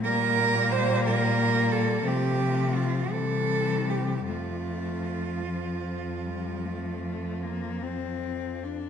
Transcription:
0.03 A#2 G3 A#3 A#4
0.72 C5
1.05 A#4
1.72 A4
2.04 C3 F3 A3 G4
2.75 F4
3.10 C3 E3 G3 A4
3.90 G4
4.27 F2 F3 A3 F4
5.45 F3
6.25 G3
6.65 A3
7.43 A#3
7.82 C4
8.63 D4

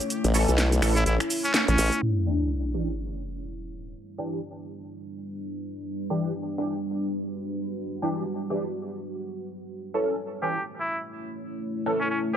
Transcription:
Already playing: A3 C#4 E4 C#5
0.00 closed hi-hat, shaker
0.10 closed hi-hat, shaker
0.24 A1, closed hi-hat, shaker
0.34 E3 C#4 A4, open hi-hat, shaker
0.48 B1, closed hi-hat, shaker
0.58 snare, closed hi-hat, shaker
0.72 closed hi-hat, shaker
0.82 A1 E3 C#4 A4, finger snap, open hi-hat, shaker
0.96 E4, closed hi-hat, shaker
1.06 A1 E4, closed hi-hat, shaker
1.20 finger snap, closed hi-hat, shaker
1.30 open hi-hat, shaker
1.44 C#4, closed hi-hat, shaker
1.54 C#4, snare, closed hi-hat, shaker
1.68 A1 C#4, closed hi-hat, shaker
1.78 A1, open hi-hat, shaker
1.92 closed hi-hat, shaker
2.02 G3 D4 E4 B4, sub drop
2.26 E3 D4 G4
2.74 E3 D4 G4
4.18 E3 D4 G4
5.86 F#4
6.10 E3 D4 G4
6.58 E3 D4 G4
8.02 E3 D4 G4
8.50 E3 D4 G4
9.70 A3 C#4 E4 C#5
9.94 E3 C#4 A4
10.42 E3 C#4 G4 A4
10.80 E4
11.86 E3 C#4 A4
12.00 C#4
12.10 C#4

